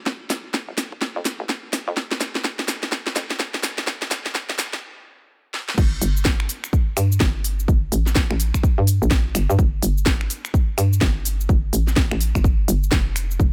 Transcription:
0.06 fm bass F1, kick, snare
0.30 fm bass G1, snare, open hi-hat
0.54 kick, snare
0.69 fm bass G1
0.78 snare, open hi-hat
0.92 kick
1.02 kick, snare
1.16 fm bass F2
1.25 snare, open hi-hat
1.40 fm bass A1
1.49 kick, snare
1.73 fm bass F1, snare, open hi-hat
1.88 fm bass F2
1.97 kick, snare
2.12 snare
2.21 fm bass F1, snare, open hi-hat
2.35 snare
2.44 kick, snare
2.59 snare
2.68 snare, open hi-hat
2.83 snare
2.92 kick, snare
3.07 snare
3.16 fm bass F2, snare, open hi-hat
3.30 snare
3.40 kick, snare
3.54 snare
3.63 snare, open hi-hat
3.78 snare
3.87 kick, snare
4.02 snare
4.11 fm bass G1, snare, open hi-hat
4.26 snare
4.35 kick, snare
4.50 fm bass G1, snare
4.59 snare, open hi-hat
4.73 kick, snare
5.54 snare
5.69 snare
5.78 fm bass G1, kick, crash, shaker
6.02 fm bass G1, open hi-hat, shaker
6.17 shaker
6.25 kick, snare, shaker
6.40 finger snap
6.49 open hi-hat, shaker
6.64 finger snap, shaker
6.73 kick, shaker
6.97 fm bass G2, finger snap, open hi-hat, shaker
7.12 shaker
7.20 fm bass G1, kick, snare, shaker
7.44 open hi-hat, shaker
7.60 shaker
7.68 fm bass G1, kick, shaker
7.92 fm bass A1, open hi-hat, shaker
8.06 snare, shaker
8.15 kick, snare, shaker
8.31 fm bass A1, finger snap
8.40 open hi-hat, shaker
8.54 finger snap, kick, shaker
8.63 kick, shaker
8.78 fm bass G2
8.87 open hi-hat, shaker
9.02 fm bass A#1, shaker
9.11 kick, snare, shaker
9.35 fm bass G1, finger snap, open hi-hat, shaker
9.50 fm bass G2, shaker
9.59 fm bass G1, kick, shaker
9.83 fm bass G1, open hi-hat, shaker
9.98 shaker
10.06 kick, snare, shaker
10.21 finger snap
10.30 open hi-hat, shaker
10.45 finger snap, shaker
10.54 kick, shaker
10.78 fm bass G2, finger snap, open hi-hat, shaker
10.93 shaker
11.01 fm bass G1, kick, snare, shaker
11.25 open hi-hat, shaker
11.41 shaker
11.49 fm bass G1, kick, shaker
11.73 fm bass A1, open hi-hat, shaker
11.87 snare, shaker
11.96 kick, snare, shaker
12.11 fm bass A1, finger snap
12.21 open hi-hat, shaker
12.35 fm bass G1, finger snap, kick, shaker
12.44 kick, shaker
12.68 fm bass G1, open hi-hat, shaker
12.83 shaker
12.92 fm bass F1, kick, snare, shaker
13.16 finger snap, open hi-hat, shaker
13.31 shaker
13.40 fm bass F1, kick, shaker

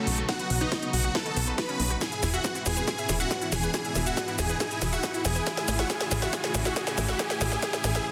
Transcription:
Already playing: string section C#3 F#3 B3 D#4 F#4, supersaw synth A3 A4, riser
0.07 analog synth bass B1, synth pluck B2, open hi-hat
0.18 synth pluck F#4, closed hi-hat
0.29 synth pluck B3, supersaw synth F#4 F#5, kick, snare, closed hi-hat
0.39 synth pluck B4, closed hi-hat
0.50 analog synth bass B1, synth pluck B3, open hi-hat
0.61 supersaw synth D#4 D#5, synth pluck B4, closed hi-hat
0.72 synth pluck F#4, kick, snare, closed hi-hat
0.83 synth pluck B3, closed hi-hat
0.93 analog synth bass B1, synth pluck B2, supersaw synth F#4 F#5, open hi-hat
1.04 synth pluck F#4, closed hi-hat
1.15 supersaw synth A4 A5, synth pluck B4, kick, snare, closed hi-hat
1.26 synth pluck D#4, closed hi-hat
1.36 analog synth bass B1, synth pluck B3, open hi-hat
1.47 synth pluck B4, closed hi-hat
1.58 synth pluck F#4, supersaw synth B4 B5, kick, snare, closed hi-hat
1.69 synth pluck C#4, closed hi-hat
1.80 analog synth bass B1, synth pluck B2, open hi-hat
1.90 synth pluck F#4, closed hi-hat
2.01 string section G#2 B2 E3 B3 E4, synth pluck E4, supersaw synth G#4 G#5, kick, snare, closed hi-hat, shaker
2.12 synth pluck E5, closed hi-hat, shaker
2.23 analog synth bass E1, synth pluck E4, snare, open hi-hat, shaker
2.34 supersaw synth F#4 F#5, synth pluck E5, closed hi-hat, shaker
2.44 synth pluck B4, kick, snare, closed hi-hat, shaker
2.55 synth pluck E4, closed hi-hat, shaker
2.66 analog synth bass E1, synth pluck E3, supersaw synth G#4 G#5, snare, open hi-hat, shaker
2.77 synth pluck B4, closed hi-hat, shaker
2.88 synth pluck E4, supersaw synth G#4 G#5, kick, snare, closed hi-hat, shaker
2.98 synth pluck E5, closed hi-hat, shaker
3.09 analog synth bass E1, synth pluck E4, snare, open hi-hat, shaker
3.20 supersaw synth F#4 F#5, synth pluck E5, closed hi-hat, shaker
3.31 synth pluck B4, kick, snare, closed hi-hat, shaker
3.42 synth pluck E4, closed hi-hat, shaker
3.52 analog synth bass E1, synth pluck E3, supersaw synth G#4 G#5, snare, open hi-hat, shaker
3.63 synth pluck B4, closed hi-hat, shaker
3.74 synth pluck E4, supersaw synth G#4 G#5, kick, snare, closed hi-hat, shaker
3.85 synth pluck E5, closed hi-hat, shaker
3.95 analog synth bass E1, synth pluck E4, snare, open hi-hat, shaker
4.06 supersaw synth F#4 F#5, synth pluck E5, closed hi-hat, shaker
4.17 synth pluck B4, kick, snare, closed hi-hat, shaker
4.28 synth pluck E4, closed hi-hat, shaker
4.39 analog synth bass E1, synth pluck E3, supersaw synth G#4 G#5, snare, open hi-hat, shaker
4.49 synth pluck B4, closed hi-hat, shaker
4.60 synth pluck E4, supersaw synth G#4 G#5, kick, snare, closed hi-hat, shaker
4.71 synth pluck E5, closed hi-hat, shaker
4.82 analog synth bass E1, synth pluck E4, snare, open hi-hat, shaker
4.93 supersaw synth F#4 F#5, synth pluck E5, closed hi-hat, shaker
5.03 synth pluck B4, kick, snare, closed hi-hat, shaker
5.14 synth pluck E4, closed hi-hat, shaker
5.25 analog synth bass E1, synth pluck E3, supersaw synth G#4 G#5, snare, open hi-hat, shaker
5.36 synth pluck B4, closed hi-hat, shaker
5.47 string section A2 C#3 C#4, synth pluck E4, supersaw synth G#4 G#5, kick, snare, closed hi-hat, shaker
5.57 synth pluck E5, snare, closed hi-hat, shaker
5.68 analog synth bass A1, synth pluck E4, snare, open hi-hat, shaker
5.79 supersaw synth F#4 F#5, synth pluck E5, snare, closed hi-hat, shaker
5.90 synth pluck E4, supersaw synth G#4 G#5, kick, snare, closed hi-hat, shaker
6.01 synth pluck E5, snare, closed hi-hat, shaker
6.11 analog synth bass A1, synth pluck E4, snare, open hi-hat, shaker
6.22 supersaw synth F#4 F#5, synth pluck E5, snare, closed hi-hat, shaker
6.33 synth pluck E4, supersaw synth G#4 G#5, kick, snare, closed hi-hat, shaker
6.44 synth pluck E5, snare, closed hi-hat, shaker
6.55 analog synth bass A1, synth pluck E4, snare, open hi-hat, shaker
6.65 supersaw synth F#4 F#5, synth pluck E5, snare, closed hi-hat, shaker
6.76 synth pluck E4, supersaw synth G#4 G#5, kick, snare, closed hi-hat, shaker
6.87 synth pluck E5, snare, closed hi-hat, shaker
6.98 analog synth bass A1, synth pluck E4, snare, open hi-hat, shaker
7.09 supersaw synth F#4 F#5, synth pluck E5, snare, closed hi-hat, shaker
7.19 synth pluck E4, supersaw synth G#4 G#5, kick, snare, closed hi-hat, shaker
7.30 synth pluck E5, snare, closed hi-hat, shaker
7.41 analog synth bass A1, synth pluck E4, supersaw synth G#4 G#5, snare, open hi-hat, shaker
7.52 synth pluck E5, snare, closed hi-hat, shaker
7.62 synth pluck E4, supersaw synth G#4 G#5, kick, snare, closed hi-hat, shaker
7.73 synth pluck E5, snare, closed hi-hat, shaker
7.84 analog synth bass A1, synth pluck E4, supersaw synth G#4 G#5, snare, open hi-hat, shaker
7.95 synth pluck E5, snare, closed hi-hat, shaker
8.06 reverse cymbal

